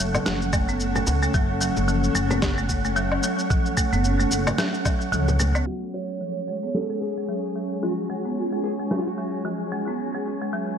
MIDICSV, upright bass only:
0, 0, Header, 1, 2, 480
1, 0, Start_track
1, 0, Key_signature, 3, "minor"
1, 0, Tempo, 540541
1, 1193, Time_signature, 4, 2, 24, 8
1, 9573, End_track
2, 0, Start_track
2, 0, Title_t, "Upright bass"
2, 0, Program_c, 0, 32
2, 0, Note_on_c, 0, 30, 88
2, 160, Note_off_c, 0, 30, 0
2, 231, Note_on_c, 0, 30, 76
2, 895, Note_off_c, 0, 30, 0
2, 951, Note_on_c, 0, 37, 80
2, 1120, Note_off_c, 0, 37, 0
2, 1192, Note_on_c, 0, 30, 96
2, 1493, Note_off_c, 0, 30, 0
2, 1569, Note_on_c, 0, 30, 95
2, 1855, Note_off_c, 0, 30, 0
2, 1911, Note_on_c, 0, 30, 83
2, 2814, Note_off_c, 0, 30, 0
2, 3487, Note_on_c, 0, 30, 92
2, 3774, Note_off_c, 0, 30, 0
2, 3829, Note_on_c, 0, 30, 91
2, 3999, Note_off_c, 0, 30, 0
2, 4549, Note_on_c, 0, 37, 92
2, 4973, Note_off_c, 0, 37, 0
2, 9573, End_track
0, 0, End_of_file